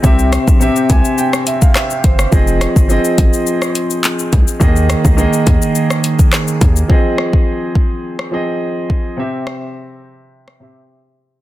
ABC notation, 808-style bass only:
X:1
M:4/4
L:1/16
Q:1/4=105
K:Fm
V:1 name="808-style bass" clef=bass
C,,3 B,,,2 z C,, z6 z G,,,2 | F,,,3 G,,,2 z A,,, z6 z C,, z | E,,3 D,,2 z E,, z6 z E,,2 | z16 |
z16 |]